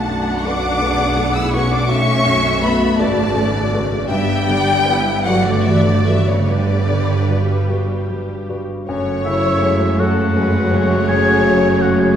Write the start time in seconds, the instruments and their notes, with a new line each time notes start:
Already playing: grand piano B1, double bass section B1, cello section A3, viola section D4 F#4, violin section F#5 A5
0.08 grand piano F#2
0.45 grand piano A3 F#4 B4, cello section D4, violin section D6
0.81 grand piano A3 F#4 B4, viola section B3 G#4
1.17 grand piano A3
1.35 cello section E4, violin section E6
1.53 grand piano A3 F#4 B4, cello section C#4, violin section C#6
1.71 cello section D4, violin section D6
1.88 grand piano B1, viola section A3 F#4, cello section C#4, violin section E5 C#6
2.25 grand piano F#2
2.61 grand piano A3 F#4 B4, cello section B3, violin section B5
2.99 double bass section G#1, viola section C#3, cello section A3, grand piano A3 F#4 B4, violin section D5 A5
3.35 grand piano A3
3.73 grand piano A3 F#4 B4
4.09 double bass section G1, grand piano G2, cello section G3, viola section B3 G4, violin section E5 G5
4.47 grand piano D3, viola section G4, violin section D5
4.86 grand piano G3 G4 B4, viola section E4, violin section B4
5.26 cello section F#3, grand piano G3 F#4 B4, viola section A3 F#4, violin section D5 F#5
5.46 cello section D3, violin section D5
5.65 cello section E3, grand piano G3, violin section E5
5.86 cello section D3, violin section D5
6.07 cello section E3, grand piano G3 F#4 B4, violin section E5
6.27 cello section C#3, violin section C#5
6.47 grand piano G2, cello section D3, viola section G3 G4, violin section B4 D5
6.89 grand piano D3
7.30 grand piano G3 F#4 B4
7.69 grand piano G3 F#4 B4
8.09 grand piano G3
8.49 grand piano G3 F#4 B4
8.87 double bass section F#1, cello section F#2, grand piano F#2, french horn section C#3 F#3, viola section F#3 A3, violin section C#4 C#5
9.25 grand piano C#3, clarinet E4, oboe E5
9.62 grand piano G#3 F#4 C#5
9.99 grand piano A3 F#4 C#5, clarinet F#4, violin section A4, oboe F#5
10.36 grand piano G#3, violin section B4
10.73 grand piano G#3 F#4 C#5, violin section C#5
11.08 grand piano F#2, clarinet G#4, oboe G#5
11.46 grand piano C#3
11.82 grand piano G#3 F#4 C#5, clarinet F#4, oboe F#5
12.00 clarinet G#4, oboe G#5